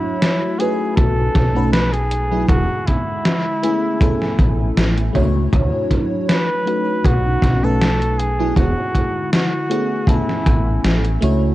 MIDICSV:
0, 0, Header, 1, 6, 480
1, 0, Start_track
1, 0, Tempo, 759494
1, 1576, Time_signature, 4, 2, 24, 8
1, 7298, End_track
2, 0, Start_track
2, 0, Title_t, "Flugelhorn"
2, 0, Program_c, 0, 56
2, 0, Note_on_c, 0, 64, 99
2, 373, Note_on_c, 0, 68, 95
2, 383, Note_off_c, 0, 64, 0
2, 605, Note_off_c, 0, 68, 0
2, 609, Note_on_c, 0, 69, 109
2, 1067, Note_off_c, 0, 69, 0
2, 1092, Note_on_c, 0, 71, 110
2, 1218, Note_on_c, 0, 68, 101
2, 1228, Note_off_c, 0, 71, 0
2, 1569, Note_off_c, 0, 68, 0
2, 1573, Note_on_c, 0, 66, 106
2, 1811, Note_on_c, 0, 64, 100
2, 1821, Note_off_c, 0, 66, 0
2, 3254, Note_off_c, 0, 64, 0
2, 3977, Note_on_c, 0, 71, 115
2, 4458, Note_on_c, 0, 66, 104
2, 4467, Note_off_c, 0, 71, 0
2, 4828, Note_on_c, 0, 69, 115
2, 4838, Note_off_c, 0, 66, 0
2, 5173, Note_on_c, 0, 68, 96
2, 5182, Note_off_c, 0, 69, 0
2, 5415, Note_off_c, 0, 68, 0
2, 5417, Note_on_c, 0, 66, 102
2, 5872, Note_off_c, 0, 66, 0
2, 5899, Note_on_c, 0, 66, 93
2, 6380, Note_on_c, 0, 64, 86
2, 6390, Note_off_c, 0, 66, 0
2, 6858, Note_off_c, 0, 64, 0
2, 7298, End_track
3, 0, Start_track
3, 0, Title_t, "FM electric piano"
3, 0, Program_c, 1, 5
3, 0, Note_on_c, 1, 57, 97
3, 0, Note_on_c, 1, 62, 90
3, 0, Note_on_c, 1, 64, 88
3, 0, Note_on_c, 1, 66, 89
3, 0, Note_on_c, 1, 73, 104
3, 346, Note_off_c, 1, 57, 0
3, 349, Note_off_c, 1, 62, 0
3, 352, Note_off_c, 1, 64, 0
3, 353, Note_off_c, 1, 66, 0
3, 356, Note_off_c, 1, 73, 0
3, 369, Note_on_c, 1, 57, 84
3, 371, Note_on_c, 1, 61, 75
3, 377, Note_on_c, 1, 63, 79
3, 382, Note_on_c, 1, 66, 75
3, 385, Note_on_c, 1, 71, 93
3, 950, Note_off_c, 1, 57, 0
3, 952, Note_off_c, 1, 61, 0
3, 955, Note_off_c, 1, 63, 0
3, 957, Note_off_c, 1, 66, 0
3, 959, Note_off_c, 1, 71, 0
3, 976, Note_on_c, 1, 57, 92
3, 980, Note_on_c, 1, 61, 86
3, 983, Note_on_c, 1, 63, 83
3, 986, Note_on_c, 1, 66, 89
3, 988, Note_on_c, 1, 71, 102
3, 1105, Note_off_c, 1, 57, 0
3, 1107, Note_off_c, 1, 61, 0
3, 1108, Note_off_c, 1, 63, 0
3, 1110, Note_off_c, 1, 66, 0
3, 1111, Note_off_c, 1, 71, 0
3, 1459, Note_on_c, 1, 54, 79
3, 1459, Note_on_c, 1, 59, 77
3, 1463, Note_on_c, 1, 62, 77
3, 1464, Note_on_c, 1, 64, 73
3, 1467, Note_on_c, 1, 68, 89
3, 1671, Note_off_c, 1, 54, 0
3, 1672, Note_off_c, 1, 59, 0
3, 1674, Note_off_c, 1, 62, 0
3, 1674, Note_off_c, 1, 64, 0
3, 1675, Note_off_c, 1, 68, 0
3, 2291, Note_on_c, 1, 57, 88
3, 2293, Note_on_c, 1, 59, 80
3, 2296, Note_on_c, 1, 61, 80
3, 2299, Note_on_c, 1, 64, 76
3, 2300, Note_on_c, 1, 68, 97
3, 2507, Note_off_c, 1, 57, 0
3, 2508, Note_off_c, 1, 59, 0
3, 2509, Note_off_c, 1, 61, 0
3, 2511, Note_off_c, 1, 64, 0
3, 2512, Note_off_c, 1, 68, 0
3, 2528, Note_on_c, 1, 57, 83
3, 2533, Note_on_c, 1, 59, 73
3, 2536, Note_on_c, 1, 61, 75
3, 2540, Note_on_c, 1, 64, 78
3, 2546, Note_on_c, 1, 69, 93
3, 3225, Note_off_c, 1, 57, 0
3, 3228, Note_off_c, 1, 59, 0
3, 3229, Note_off_c, 1, 61, 0
3, 3232, Note_off_c, 1, 64, 0
3, 3234, Note_off_c, 1, 69, 0
3, 3242, Note_on_c, 1, 57, 91
3, 3249, Note_on_c, 1, 62, 84
3, 3253, Note_on_c, 1, 64, 88
3, 3258, Note_on_c, 1, 66, 85
3, 3262, Note_on_c, 1, 73, 111
3, 4182, Note_off_c, 1, 57, 0
3, 4186, Note_off_c, 1, 62, 0
3, 4188, Note_off_c, 1, 64, 0
3, 4190, Note_off_c, 1, 66, 0
3, 4192, Note_off_c, 1, 73, 0
3, 4205, Note_on_c, 1, 57, 87
3, 4210, Note_on_c, 1, 61, 76
3, 4214, Note_on_c, 1, 63, 80
3, 4218, Note_on_c, 1, 66, 77
3, 4224, Note_on_c, 1, 71, 97
3, 4788, Note_off_c, 1, 57, 0
3, 4791, Note_off_c, 1, 61, 0
3, 4793, Note_off_c, 1, 63, 0
3, 4795, Note_off_c, 1, 66, 0
3, 4798, Note_off_c, 1, 71, 0
3, 4820, Note_on_c, 1, 57, 89
3, 4820, Note_on_c, 1, 61, 84
3, 4823, Note_on_c, 1, 63, 88
3, 4826, Note_on_c, 1, 66, 85
3, 4829, Note_on_c, 1, 71, 109
3, 4947, Note_off_c, 1, 57, 0
3, 4947, Note_off_c, 1, 61, 0
3, 4949, Note_off_c, 1, 63, 0
3, 4950, Note_off_c, 1, 66, 0
3, 4951, Note_off_c, 1, 71, 0
3, 5302, Note_on_c, 1, 54, 86
3, 5304, Note_on_c, 1, 59, 79
3, 5305, Note_on_c, 1, 62, 80
3, 5308, Note_on_c, 1, 64, 81
3, 5309, Note_on_c, 1, 68, 94
3, 5513, Note_off_c, 1, 54, 0
3, 5514, Note_off_c, 1, 59, 0
3, 5515, Note_off_c, 1, 62, 0
3, 5516, Note_off_c, 1, 64, 0
3, 5516, Note_off_c, 1, 68, 0
3, 6127, Note_on_c, 1, 57, 91
3, 6131, Note_on_c, 1, 59, 84
3, 6133, Note_on_c, 1, 61, 82
3, 6135, Note_on_c, 1, 64, 84
3, 6136, Note_on_c, 1, 68, 99
3, 6345, Note_off_c, 1, 57, 0
3, 6347, Note_off_c, 1, 59, 0
3, 6348, Note_off_c, 1, 61, 0
3, 6349, Note_off_c, 1, 64, 0
3, 6350, Note_off_c, 1, 68, 0
3, 6363, Note_on_c, 1, 57, 86
3, 6366, Note_on_c, 1, 59, 78
3, 6372, Note_on_c, 1, 61, 77
3, 6376, Note_on_c, 1, 64, 74
3, 6381, Note_on_c, 1, 69, 90
3, 7063, Note_off_c, 1, 57, 0
3, 7065, Note_off_c, 1, 59, 0
3, 7068, Note_off_c, 1, 61, 0
3, 7069, Note_off_c, 1, 64, 0
3, 7072, Note_off_c, 1, 69, 0
3, 7083, Note_on_c, 1, 57, 99
3, 7089, Note_on_c, 1, 62, 84
3, 7093, Note_on_c, 1, 64, 92
3, 7098, Note_on_c, 1, 66, 90
3, 7103, Note_on_c, 1, 73, 106
3, 7298, Note_off_c, 1, 57, 0
3, 7298, Note_off_c, 1, 62, 0
3, 7298, Note_off_c, 1, 64, 0
3, 7298, Note_off_c, 1, 66, 0
3, 7298, Note_off_c, 1, 73, 0
3, 7298, End_track
4, 0, Start_track
4, 0, Title_t, "Ambient pad"
4, 0, Program_c, 2, 92
4, 0, Note_on_c, 2, 54, 65
4, 0, Note_on_c, 2, 64, 81
4, 368, Note_off_c, 2, 54, 0
4, 369, Note_off_c, 2, 64, 0
4, 371, Note_on_c, 2, 57, 75
4, 373, Note_on_c, 2, 63, 89
4, 1562, Note_off_c, 2, 57, 0
4, 1562, Note_off_c, 2, 63, 0
4, 1581, Note_on_c, 2, 56, 69
4, 1581, Note_on_c, 2, 64, 85
4, 1582, Note_on_c, 2, 50, 76
4, 2291, Note_off_c, 2, 56, 0
4, 2291, Note_off_c, 2, 64, 0
4, 2292, Note_off_c, 2, 50, 0
4, 2302, Note_on_c, 2, 57, 73
4, 2303, Note_on_c, 2, 80, 92
4, 3487, Note_off_c, 2, 57, 0
4, 3488, Note_off_c, 2, 80, 0
4, 3497, Note_on_c, 2, 54, 68
4, 3497, Note_on_c, 2, 64, 81
4, 4209, Note_off_c, 2, 54, 0
4, 4209, Note_off_c, 2, 64, 0
4, 4219, Note_on_c, 2, 63, 92
4, 4220, Note_on_c, 2, 57, 75
4, 5406, Note_off_c, 2, 57, 0
4, 5406, Note_off_c, 2, 63, 0
4, 5417, Note_on_c, 2, 64, 82
4, 5418, Note_on_c, 2, 50, 74
4, 5419, Note_on_c, 2, 56, 70
4, 6129, Note_off_c, 2, 64, 0
4, 6130, Note_off_c, 2, 50, 0
4, 6130, Note_off_c, 2, 56, 0
4, 6136, Note_on_c, 2, 57, 78
4, 6138, Note_on_c, 2, 80, 90
4, 7298, Note_off_c, 2, 57, 0
4, 7298, Note_off_c, 2, 80, 0
4, 7298, End_track
5, 0, Start_track
5, 0, Title_t, "Fretless electric bass"
5, 0, Program_c, 3, 35
5, 615, Note_on_c, 3, 35, 75
5, 815, Note_off_c, 3, 35, 0
5, 853, Note_on_c, 3, 35, 92
5, 1542, Note_off_c, 3, 35, 0
5, 1570, Note_on_c, 3, 28, 101
5, 1678, Note_off_c, 3, 28, 0
5, 2774, Note_on_c, 3, 33, 77
5, 2974, Note_off_c, 3, 33, 0
5, 3016, Note_on_c, 3, 33, 80
5, 3215, Note_off_c, 3, 33, 0
5, 3255, Note_on_c, 3, 37, 92
5, 3455, Note_off_c, 3, 37, 0
5, 3494, Note_on_c, 3, 38, 95
5, 3600, Note_off_c, 3, 38, 0
5, 4450, Note_on_c, 3, 35, 76
5, 4652, Note_off_c, 3, 35, 0
5, 4689, Note_on_c, 3, 35, 94
5, 5380, Note_off_c, 3, 35, 0
5, 5411, Note_on_c, 3, 28, 103
5, 5518, Note_off_c, 3, 28, 0
5, 6613, Note_on_c, 3, 33, 81
5, 6814, Note_off_c, 3, 33, 0
5, 6855, Note_on_c, 3, 33, 88
5, 7055, Note_off_c, 3, 33, 0
5, 7095, Note_on_c, 3, 37, 97
5, 7295, Note_off_c, 3, 37, 0
5, 7298, End_track
6, 0, Start_track
6, 0, Title_t, "Drums"
6, 138, Note_on_c, 9, 38, 119
6, 138, Note_on_c, 9, 42, 80
6, 201, Note_off_c, 9, 38, 0
6, 201, Note_off_c, 9, 42, 0
6, 377, Note_on_c, 9, 42, 64
6, 440, Note_off_c, 9, 42, 0
6, 615, Note_on_c, 9, 36, 117
6, 616, Note_on_c, 9, 42, 81
6, 678, Note_off_c, 9, 36, 0
6, 679, Note_off_c, 9, 42, 0
6, 854, Note_on_c, 9, 36, 117
6, 856, Note_on_c, 9, 38, 39
6, 856, Note_on_c, 9, 42, 67
6, 917, Note_off_c, 9, 36, 0
6, 919, Note_off_c, 9, 38, 0
6, 919, Note_off_c, 9, 42, 0
6, 1096, Note_on_c, 9, 38, 120
6, 1096, Note_on_c, 9, 42, 81
6, 1159, Note_off_c, 9, 38, 0
6, 1159, Note_off_c, 9, 42, 0
6, 1224, Note_on_c, 9, 42, 36
6, 1287, Note_off_c, 9, 42, 0
6, 1335, Note_on_c, 9, 42, 66
6, 1398, Note_off_c, 9, 42, 0
6, 1570, Note_on_c, 9, 36, 127
6, 1576, Note_on_c, 9, 42, 81
6, 1633, Note_off_c, 9, 36, 0
6, 1639, Note_off_c, 9, 42, 0
6, 1817, Note_on_c, 9, 42, 62
6, 1821, Note_on_c, 9, 36, 66
6, 1880, Note_off_c, 9, 42, 0
6, 1884, Note_off_c, 9, 36, 0
6, 2056, Note_on_c, 9, 38, 125
6, 2056, Note_on_c, 9, 42, 79
6, 2119, Note_off_c, 9, 38, 0
6, 2119, Note_off_c, 9, 42, 0
6, 2297, Note_on_c, 9, 42, 67
6, 2360, Note_off_c, 9, 42, 0
6, 2532, Note_on_c, 9, 36, 127
6, 2537, Note_on_c, 9, 42, 77
6, 2595, Note_off_c, 9, 36, 0
6, 2600, Note_off_c, 9, 42, 0
6, 2665, Note_on_c, 9, 38, 36
6, 2728, Note_off_c, 9, 38, 0
6, 2773, Note_on_c, 9, 36, 114
6, 2775, Note_on_c, 9, 42, 65
6, 2836, Note_off_c, 9, 36, 0
6, 2838, Note_off_c, 9, 42, 0
6, 3017, Note_on_c, 9, 38, 114
6, 3017, Note_on_c, 9, 42, 75
6, 3081, Note_off_c, 9, 38, 0
6, 3081, Note_off_c, 9, 42, 0
6, 3146, Note_on_c, 9, 42, 36
6, 3209, Note_off_c, 9, 42, 0
6, 3256, Note_on_c, 9, 36, 69
6, 3257, Note_on_c, 9, 42, 65
6, 3319, Note_off_c, 9, 36, 0
6, 3320, Note_off_c, 9, 42, 0
6, 3494, Note_on_c, 9, 36, 119
6, 3496, Note_on_c, 9, 42, 74
6, 3558, Note_off_c, 9, 36, 0
6, 3559, Note_off_c, 9, 42, 0
6, 3733, Note_on_c, 9, 36, 59
6, 3734, Note_on_c, 9, 42, 59
6, 3796, Note_off_c, 9, 36, 0
6, 3798, Note_off_c, 9, 42, 0
6, 3976, Note_on_c, 9, 38, 122
6, 3976, Note_on_c, 9, 42, 76
6, 4039, Note_off_c, 9, 38, 0
6, 4039, Note_off_c, 9, 42, 0
6, 4216, Note_on_c, 9, 42, 61
6, 4280, Note_off_c, 9, 42, 0
6, 4451, Note_on_c, 9, 36, 117
6, 4457, Note_on_c, 9, 42, 81
6, 4514, Note_off_c, 9, 36, 0
6, 4520, Note_off_c, 9, 42, 0
6, 4689, Note_on_c, 9, 36, 96
6, 4698, Note_on_c, 9, 38, 37
6, 4698, Note_on_c, 9, 42, 61
6, 4752, Note_off_c, 9, 36, 0
6, 4761, Note_off_c, 9, 38, 0
6, 4761, Note_off_c, 9, 42, 0
6, 4937, Note_on_c, 9, 38, 114
6, 4937, Note_on_c, 9, 42, 71
6, 5001, Note_off_c, 9, 38, 0
6, 5001, Note_off_c, 9, 42, 0
6, 5067, Note_on_c, 9, 42, 35
6, 5130, Note_off_c, 9, 42, 0
6, 5178, Note_on_c, 9, 42, 59
6, 5241, Note_off_c, 9, 42, 0
6, 5411, Note_on_c, 9, 36, 109
6, 5417, Note_on_c, 9, 42, 77
6, 5474, Note_off_c, 9, 36, 0
6, 5480, Note_off_c, 9, 42, 0
6, 5654, Note_on_c, 9, 36, 56
6, 5657, Note_on_c, 9, 42, 62
6, 5718, Note_off_c, 9, 36, 0
6, 5720, Note_off_c, 9, 42, 0
6, 5897, Note_on_c, 9, 38, 119
6, 5897, Note_on_c, 9, 42, 76
6, 5960, Note_off_c, 9, 38, 0
6, 5960, Note_off_c, 9, 42, 0
6, 6137, Note_on_c, 9, 42, 63
6, 6200, Note_off_c, 9, 42, 0
6, 6367, Note_on_c, 9, 36, 115
6, 6378, Note_on_c, 9, 42, 74
6, 6430, Note_off_c, 9, 36, 0
6, 6441, Note_off_c, 9, 42, 0
6, 6507, Note_on_c, 9, 38, 34
6, 6570, Note_off_c, 9, 38, 0
6, 6613, Note_on_c, 9, 36, 108
6, 6616, Note_on_c, 9, 42, 67
6, 6677, Note_off_c, 9, 36, 0
6, 6679, Note_off_c, 9, 42, 0
6, 6855, Note_on_c, 9, 38, 109
6, 6855, Note_on_c, 9, 42, 74
6, 6918, Note_off_c, 9, 38, 0
6, 6918, Note_off_c, 9, 42, 0
6, 6983, Note_on_c, 9, 42, 34
6, 7046, Note_off_c, 9, 42, 0
6, 7094, Note_on_c, 9, 42, 61
6, 7157, Note_off_c, 9, 42, 0
6, 7298, End_track
0, 0, End_of_file